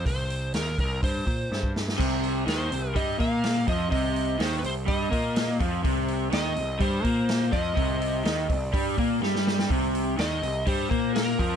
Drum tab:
CC |----------------|x---------------|----------------|----------------|
HH |o-o-o-o-o-o-----|o-o-o-o-o-o-o-o-|o-o-o-o-o-o-o-o-|o-o-o-o-o-o-o-o-|
SD |----o-------o-oo|----o-------o---|----o-------o---|----o-------o---|
BD |o-----o-o-o--o--|o-------o-o---o-|o-------o-o---o-|o-------o-o---o-|

CC |----------------|----------------|
HH |o-o-o-o-o-o-----|o-o-o-o-o-o-o-o-|
SD |----o-------oooo|----o-------o---|
BD |o-----o-o-o-----|o-------o-o---o-|